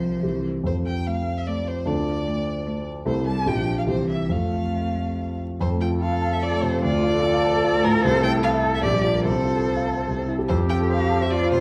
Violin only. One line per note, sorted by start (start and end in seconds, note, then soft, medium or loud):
0.00 0.44 C5 medium
0.66 0.74 C5 medium
0.87 1.09 G5 medium
1.07 1.40 F5 medium
1.38 1.49 E5 medium
1.47 1.69 D5 medium
1.67 1.88 C5 medium
1.87 2.87 D5 medium
3.07 3.26 C5 medium
3.27 3.49 A5 medium
3.48 3.78 G5 medium
3.78 3.82 F5 medium
3.88 4.09 C5 medium
4.10 4.33 E5 soft
4.31 5.40 F5 medium
5.61 5.69 C5 medium
5.81 5.89 G5 medium
6.02 6.35 F5 medium
6.33 6.44 E5 medium
6.43 6.65 D5 medium
6.63 6.83 C5 medium
6.84 7.86 D5 loud
7.84 8.04 A#4 medium
8.04 8.23 C5 loud
8.24 8.32 G5 loud
8.43 8.51 F5 medium
8.75 8.83 E5 medium
8.83 9.03 D5 loud
9.03 9.23 D5 medium
9.24 10.26 C5 medium
10.49 10.57 C5 medium
10.69 10.77 G5 medium
10.91 11.24 F5 medium
11.22 11.32 E5 medium
11.31 11.51 D5 medium
11.52 11.60 C5 medium